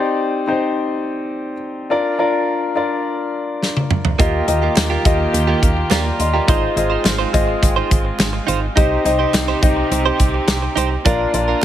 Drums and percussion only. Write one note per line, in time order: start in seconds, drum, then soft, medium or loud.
3.63 snare medium
3.77 high tom medium
3.91 mid tom medium
4.05 floor tom medium
4.19 kick loud
4.19 closed hi-hat medium
4.48 closed hi-hat medium
4.76 snare loud
4.76 clap medium
4.76 closed hi-hat loud
4.76 tambourine medium
5.05 kick loud
5.05 closed hi-hat medium
5.34 closed hi-hat medium
5.63 kick medium
5.63 closed hi-hat medium
5.91 snare loud
5.91 clap medium
5.91 closed hi-hat medium
5.91 tambourine medium
6.20 closed hi-hat medium
6.48 kick loud
6.48 closed hi-hat medium
6.77 closed hi-hat medium
7.05 snare loud
7.05 clap medium
7.05 closed hi-hat loud
7.05 tambourine medium
7.34 kick medium
7.34 closed hi-hat medium
7.63 kick loud
7.63 closed hi-hat medium
7.91 kick medium
7.91 closed hi-hat medium
8.19 snare loud
8.19 clap medium
8.19 closed hi-hat medium
8.19 tambourine medium
8.48 closed hi-hat medium
8.77 kick loud
8.77 closed hi-hat medium
9.06 closed hi-hat medium
9.34 snare loud
9.34 clap medium
9.34 closed hi-hat loud
9.34 tambourine medium
9.63 kick loud
9.63 closed hi-hat medium
9.92 closed hi-hat medium
10.20 kick medium
10.20 closed hi-hat medium
10.48 snare loud
10.48 clap medium
10.48 closed hi-hat medium
10.48 tambourine medium
10.77 closed hi-hat medium
11.06 kick loud
11.06 closed hi-hat medium
11.34 closed hi-hat medium